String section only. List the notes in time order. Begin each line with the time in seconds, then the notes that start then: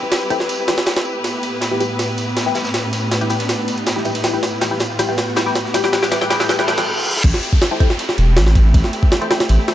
Already playing: C4 E4 G4 B4
1.24 A2 B3
7.24 A3 C4 E4 G4